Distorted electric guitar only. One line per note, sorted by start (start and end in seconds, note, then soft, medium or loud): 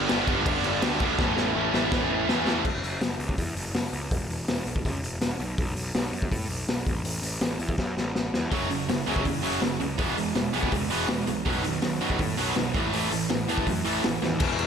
0.09 0.26 G2 medium
0.09 0.26 D3 medium
0.09 0.27 G3 medium
0.09 0.27 B3 medium
0.09 0.27 D4 medium
0.27 0.45 G2 medium
0.27 0.45 D3 medium
0.27 0.46 G3 medium
0.27 0.46 B3 medium
0.27 0.46 D4 medium
0.46 0.80 G2 loud
0.46 0.81 D3 loud
0.46 0.81 G3 medium
0.46 0.81 B3 loud
0.46 0.82 D4 loud
0.81 0.99 G2 medium
0.81 0.99 D3 loud
0.81 1.00 G3 medium
0.81 1.00 B3 loud
0.81 1.00 D4 medium
1.00 1.18 G2 medium
1.00 1.18 D3 medium
1.00 1.18 G3 medium
1.00 1.18 B3 medium
1.00 1.18 D4 loud
1.19 1.54 A2 loud
1.19 1.55 E3 loud
1.19 1.55 A3 loud
1.19 1.55 C#4 loud
1.19 1.55 E4 loud
1.56 1.72 A2 medium
1.56 1.72 E3 medium
1.56 1.73 A3 medium
1.56 1.73 C#4 medium
1.56 1.73 E4 medium
1.73 1.91 A2 loud
1.73 1.90 E3 medium
1.73 1.91 A3 medium
1.73 1.91 C#4 medium
1.73 1.92 E4 loud
1.92 2.27 A2 loud
1.92 2.27 E3 loud
1.92 2.27 A3 loud
1.92 2.28 C#4 loud
1.92 2.28 E4 loud
2.28 2.45 A2 medium
2.28 2.45 E3 medium
2.28 2.46 A3 loud
2.28 2.46 C#4 medium
2.28 2.46 E4 loud
2.46 2.64 A2 medium
2.46 2.64 E3 medium
2.46 2.64 A3 medium
2.46 2.64 C#4 medium
2.46 2.64 E4 medium
8.52 8.68 F#2 medium
8.52 8.69 C#3 medium
8.52 8.69 F#3 loud
8.70 8.87 F#2 medium
8.70 8.87 C#3 medium
8.89 9.05 F#2 medium
8.89 9.05 C#3 medium
9.06 9.23 F#2 medium
9.06 9.23 C#3 medium
9.06 9.24 F#3 medium
9.24 9.41 F#2 medium
9.24 9.41 C#3 medium
9.42 9.59 F#2 medium
9.42 9.60 C#3 medium
9.42 9.61 F#3 medium
9.61 9.78 F#2 medium
9.61 9.78 C#3 medium
9.80 9.97 F#2 medium
9.80 9.97 C#3 medium
9.98 10.16 E3 medium
9.98 10.16 G#3 loud
9.98 10.16 B3 loud
10.17 10.34 E3 medium
10.17 10.34 G#3 medium
10.35 10.52 E3 medium
10.35 10.52 G#3 medium
10.53 10.71 E3 medium
10.53 10.71 G#3 medium
10.53 10.71 B3 loud
10.73 10.89 E3 medium
10.73 10.89 G#3 medium
10.90 11.08 E3 medium
10.90 11.08 G#3 medium
10.90 11.08 B3 medium
11.09 11.26 E3 medium
11.09 11.26 G#3 medium
11.27 11.44 E3 medium
11.27 11.44 G#3 medium
11.45 11.62 B2 medium
11.45 11.63 D#3 medium
11.45 11.63 F#3 loud
11.64 11.80 B2 medium
11.64 11.81 D#3 medium
11.82 11.99 B2 medium
11.82 11.99 D#3 medium
12.01 12.18 B2 medium
12.01 12.18 D#3 loud
12.01 12.19 F#3 loud
12.19 12.36 B2 medium
12.19 12.36 D#3 medium
12.37 12.54 B2 medium
12.37 12.54 D#3 medium
12.37 12.55 F#3 loud
12.55 12.72 B2 medium
12.55 12.72 D#3 medium
12.74 12.91 A2 medium
12.74 12.92 E3 medium
12.74 12.92 A3 medium
12.92 13.10 A2 medium
12.92 13.10 E3 loud
12.92 13.11 A3 loud
13.11 13.28 A2 medium
13.11 13.28 E3 medium
13.30 13.46 A2 medium
13.30 13.46 E3 medium
13.48 13.66 A2 medium
13.48 13.66 E3 medium
13.48 13.66 A3 loud
13.67 13.83 A2 medium
13.67 13.83 E3 medium
13.84 14.02 A2 medium
13.84 14.02 E3 medium
13.84 14.02 A3 loud
14.03 14.20 A2 medium
14.03 14.20 E3 medium
14.22 14.38 A2 medium
14.22 14.38 E3 medium